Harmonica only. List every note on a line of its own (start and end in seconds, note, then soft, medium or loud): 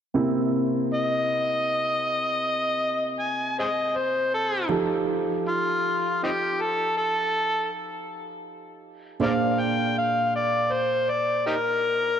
0.94 3.15 D#5 loud
3.20 3.55 G#5 medium
3.59 3.68 G#4 soft
3.59 3.66 C5 soft
3.59 3.98 D#5 medium
3.96 4.31 C5 medium
4.34 4.69 A4 medium
5.48 6.19 F4 medium
6.24 6.30 C4 soft
6.24 6.31 D#4 soft
6.24 6.62 G4 medium
6.61 6.95 A4 medium
6.97 7.68 A4 medium
9.23 9.30 A#4 medium
9.23 9.32 D5 medium
9.23 9.61 F5 medium
9.60 9.95 G5 medium
9.98 10.32 F5 medium
10.36 10.74 D5 medium
10.72 11.11 C5 medium
11.09 11.44 D5 medium
11.47 11.55 D#4 medium
11.47 11.54 G4 medium
11.47 12.20 A#4 medium